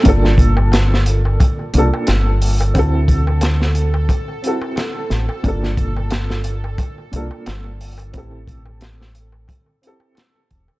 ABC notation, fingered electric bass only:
X:1
M:4/4
L:1/8
Q:"Swing 16ths" 1/4=89
K:Gdor
V:1 name="Fingered electric bass" clef=bass
G,,,4 z C,, G,,,2 | D,,4 z3 A,,, | G,,,4 z C,, G,,,2 | A,,,4 z3 E,,, |]